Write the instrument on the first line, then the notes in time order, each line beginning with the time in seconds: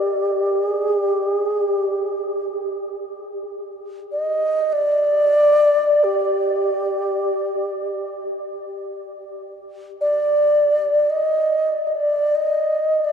xiao
Already playing: G4
0.67 G#4
1.00 G4
1.35 G#4
1.68 G4
4.12 D#5
4.73 D5
6.04 G4
10.01 D5
11.10 D#5
11.87 D#5
11.95 D5
12.35 D#5
13.05 D5